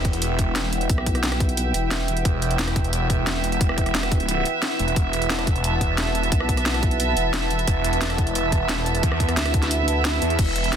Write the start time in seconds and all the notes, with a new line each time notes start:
Already playing: E1 E4 B4 E5 F#5 G5, sub drop
0.05 kick, closed hi-hat
0.13 closed hi-hat
0.22 closed hi-hat
0.39 kick, closed hi-hat
0.56 snare, closed hi-hat
0.73 closed hi-hat
0.81 closed hi-hat
0.90 B1, kick, closed hi-hat
0.98 cross-stick
1.06 kick, closed hi-hat
1.15 cross-stick, closed hi-hat
1.23 snare, closed hi-hat
1.32 cross-stick, closed hi-hat
1.40 kick, closed hi-hat
1.49 closed hi-hat
1.57 closed hi-hat
1.74 E1, closed hi-hat
1.91 snare, closed hi-hat
2.08 closed hi-hat
2.17 closed hi-hat
2.25 E1, kick, closed hi-hat
2.42 closed hi-hat
2.51 closed hi-hat
2.59 snare, closed hi-hat
2.68 cross-stick, closed hi-hat
2.76 kick, closed hi-hat
2.84 closed hi-hat
2.93 closed hi-hat
3.10 kick, closed hi-hat
3.27 snare, closed hi-hat
3.44 closed hi-hat
3.52 closed hi-hat
3.61 E1, kick, closed hi-hat
3.69 cross-stick
3.78 kick, closed hi-hat
3.86 cross-stick, closed hi-hat
3.95 snare, closed hi-hat
4.03 cross-stick, closed hi-hat
4.12 kick, closed hi-hat
4.20 closed hi-hat
4.29 closed hi-hat
4.45 closed hi-hat
4.62 snare, closed hi-hat
4.79 E1, closed hi-hat
4.88 closed hi-hat
4.96 E1 A5, kick, closed hi-hat
5.13 closed hi-hat
5.22 closed hi-hat
5.30 snare, closed hi-hat
5.39 cross-stick, closed hi-hat
5.47 kick, closed hi-hat
5.56 closed hi-hat
5.64 closed hi-hat
5.81 kick, closed hi-hat
5.98 snare, closed hi-hat
6.15 closed hi-hat
6.23 closed hi-hat
6.32 B1, kick, closed hi-hat
6.40 cross-stick
6.49 kick, closed hi-hat
6.57 cross-stick, closed hi-hat
6.66 snare, closed hi-hat
6.74 cross-stick, closed hi-hat
6.83 kick, closed hi-hat
6.91 closed hi-hat
7.00 closed hi-hat
7.17 E1, closed hi-hat
7.34 snare, closed hi-hat
7.51 closed hi-hat
7.59 closed hi-hat
7.67 E1, kick, closed hi-hat
7.84 closed hi-hat
7.93 closed hi-hat
8.01 snare, closed hi-hat
8.10 cross-stick, closed hi-hat
8.18 kick, closed hi-hat
8.27 closed hi-hat
8.35 closed hi-hat
8.52 kick, closed hi-hat
8.69 snare, closed hi-hat
8.86 closed hi-hat
8.95 closed hi-hat
9.03 E2, kick, closed hi-hat
9.12 cross-stick
9.20 kick, closed hi-hat
9.29 cross-stick, closed hi-hat
9.37 D2, snare, closed hi-hat
9.45 cross-stick, closed hi-hat
9.54 kick, closed hi-hat
9.62 snare, closed hi-hat
9.71 closed hi-hat, swell
9.88 closed hi-hat
10.05 snare, closed hi-hat
10.22 E2, closed hi-hat
10.30 closed hi-hat
10.39 E1 E5 G5, kick, closed hi-hat, crash
10.56 closed hi-hat
10.64 closed hi-hat
10.73 snare, closed hi-hat